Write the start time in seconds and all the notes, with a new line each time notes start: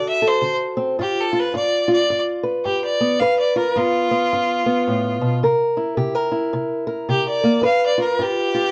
Already playing: D3 F#4 A4
0.09 E5
0.22 A4
0.28 C5
0.42 D3
0.77 C4
0.99 G2 F4 G4
1.21 A4
1.33 F4
1.40 B4
1.54 G2 F4 D5
1.88 F4
1.93 D5
2.10 G2
2.43 B4
2.65 G2 G4
2.84 D5
3.01 B3
3.19 G2 B4 F5
3.39 D5
3.56 F4 A#4
3.76 G2 B3 F4
4.11 B3
4.33 G2
4.66 B3
4.88 A2
5.21 B2
5.43 C3 A#4
5.77 E4
5.97 C3 G4
6.15 A#4
6.32 E4
6.53 C3
6.87 A#4
7.09 C3 G4
7.28 D5
7.44 A#3
7.61 G2 B4 F5
7.86 D5
7.98 F4 A#4
8.19 G2 F4 G4
8.54 F4